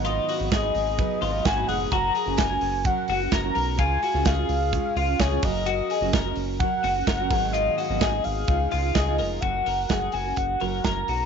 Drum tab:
RD |x-x-x-x-|x-x-x-x-|x-x-x-x-|x-x-x-x-|
HH |popopopo|popopopo|popopopo|popopopo|
SD |--o---o-|--o---o-|--o---o-|--o---o-|
BD |--o-o-o-|o-o-o-o-|o-o-o-oo|--o-o-oo|

RD |x-x-x-x-|--------|
HH |popopopo|xoxoxoxo|
SD |--o---o-|--o---o-|
BD |--o-o-o-|o-o-o-o-|